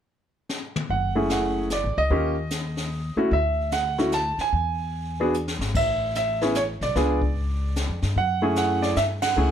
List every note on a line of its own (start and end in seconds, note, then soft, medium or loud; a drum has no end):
0.49 snare medium
0.76 mid tom medium
0.90 1.80 F#1 medium
0.90 1.28 F#5 medium
0.90 brush sweep soft
0.90 kick soft
1.15 1.67 A3 medium
1.15 1.68 C#4 medium
1.15 1.68 E4 medium
1.15 1.68 G#4 medium
1.30 1.72 F#5 medium
1.30 snare medium
1.30 hi-hat pedal medium
1.70 1.98 D5 medium
1.70 snare soft
1.70 hi-hat pedal soft
1.84 1.96 A1 medium
1.97 2.10 C#2 medium
1.97 3.14 D#5 medium
2.10 3.13 D#2 medium
2.10 2.34 A#3 medium
2.10 2.34 C#4 medium
2.10 2.34 F4 soft
2.10 2.35 G4 medium
2.10 brush sweep soft
2.10 kick soft
2.51 snare medium
2.51 hi-hat pedal medium
2.77 snare soft
3.17 3.30 A3 medium
3.17 3.30 C#4 medium
3.17 3.31 E4 medium
3.17 3.31 F#4 medium
3.17 muted upright bass stroke soft
3.31 4.34 D2 medium
3.31 3.70 E5 medium
3.31 brush sweep soft
3.31 kick soft
3.71 4.10 F#5 medium
3.71 snare medium
3.71 hi-hat pedal soft
3.98 4.11 A3 medium
3.98 4.11 C#4 soft
3.98 4.12 E4 soft
3.98 4.12 F#4 medium
3.98 snare soft
4.12 4.40 A5 medium
4.12 snare medium
4.12 hi-hat pedal medium
4.38 5.17 G#5 medium
4.38 muted upright bass stroke soft
4.38 snare soft
4.53 5.56 E2 medium
4.53 brush sweep soft
4.53 kick soft
5.20 5.33 B3 medium
5.20 5.33 D4 medium
5.20 5.33 F#4 medium
5.20 5.33 G#4 medium
5.34 hi-hat pedal medium
5.48 snare medium
5.59 5.73 G#1 medium
5.59 snare medium
5.75 6.77 A1 medium
5.75 6.15 E5 medium
5.75 brush sweep soft
5.75 kick medium
5.75 crash medium
6.15 6.57 E5 medium
6.15 snare soft
6.15 hi-hat pedal medium
6.41 6.54 B3 medium
6.41 6.54 C#4 medium
6.41 6.54 E4 medium
6.41 6.54 G#4 medium
6.41 snare soft
6.55 6.62 C#5 medium
6.55 snare medium
6.55 hi-hat pedal medium
6.81 6.94 B1 medium
6.81 7.99 D5 medium
6.81 snare soft
6.95 7.85 C#2 medium
6.95 7.19 B3 medium
6.95 7.19 D4 medium
6.95 7.19 F4 medium
6.95 7.19 G#4 medium
6.95 brush sweep soft
6.95 kick soft
6.95 snare soft
7.22 kick soft
7.76 snare medium
7.76 hi-hat pedal medium
7.89 8.02 F2 medium
8.02 8.15 G2 medium
8.02 snare soft
8.16 8.93 F#2 medium
8.16 8.56 F#5 loud
8.16 brush sweep soft
8.16 kick soft
8.42 8.94 A3 medium
8.42 8.94 C#4 medium
8.42 8.94 E4 medium
8.42 8.94 G#4 medium
8.56 8.81 F#5 medium
8.56 snare medium
8.56 hi-hat pedal soft
8.82 8.96 D5 medium
8.82 snare soft
8.96 9.34 G2 medium
8.96 9.03 E5 medium
8.96 snare medium
8.96 hi-hat pedal medium
9.22 9.51 F#5 medium
9.22 snare medium
9.22 ride medium
9.36 9.51 C#2 medium
9.36 9.51 A3 medium
9.36 9.51 C#4 soft
9.36 9.51 E4 medium
9.36 9.51 G#4 medium
9.36 brush sweep medium